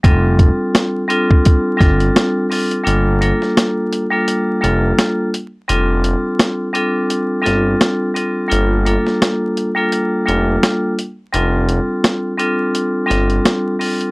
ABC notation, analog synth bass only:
X:1
M:4/4
L:1/16
Q:"Swing 16ths" 1/4=85
K:Gm
V:1 name="Analog synth bass" clef=bass
F,,,3 z6 z G,,,2 z4 | G,,,3 z6 z F,,,2 z4 | F,,,3 z6 z G,,,2 z4 | G,,,3 z6 z F,,,2 z4 |
F,,,3 z6 z G,,,2 z4 |]